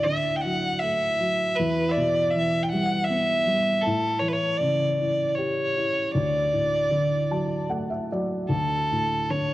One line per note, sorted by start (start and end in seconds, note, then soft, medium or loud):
0.00 1.54 D2 medium
0.00 1.16 A2 soft
0.04 1.54 D3 soft
0.04 0.38 E5 medium
0.37 0.43 G5 medium
0.42 1.18 F#3 soft
0.42 0.81 F#5 medium
0.80 1.56 A3 soft
0.80 1.56 E5 medium
1.20 1.57 F#3 soft
1.55 1.90 B4 medium
1.59 3.81 E2 medium
1.89 2.32 D5 medium
1.89 1.93 E5 medium
1.97 3.43 B2 soft
2.31 2.65 E5 medium
2.35 3.81 E3 soft
2.63 2.70 G5 medium
2.69 3.07 F#5 medium
2.73 3.46 G3 soft
3.05 3.83 E5 medium
3.10 3.83 B3 soft
3.47 3.84 G3 soft
3.81 4.21 A4 medium
3.86 6.11 A2 medium
4.20 5.71 E3 soft
4.20 4.30 C#5 medium
4.28 4.34 B4 medium
4.33 4.59 C#5 medium
4.57 6.10 C#3 soft
4.57 5.29 D5 medium
5.01 5.75 E4 soft
5.29 5.36 D5 medium
5.35 6.12 G4 soft
5.35 6.13 C#5 medium
5.77 6.13 E4 soft
6.11 8.47 D2 medium
6.11 7.69 D5 medium
6.53 8.07 A2 soft
6.91 8.47 D3 soft
7.31 8.10 F#3 soft
7.31 7.68 A5 medium
7.69 8.48 A3 soft
7.69 7.89 F#5 medium
7.90 8.09 E5 soft
8.12 8.50 F#3 soft
8.12 8.49 D5 soft
8.49 9.54 D2 medium
8.49 9.32 A4 medium
8.92 9.54 A2 soft
9.30 9.54 D3 soft
9.30 9.54 C#5 medium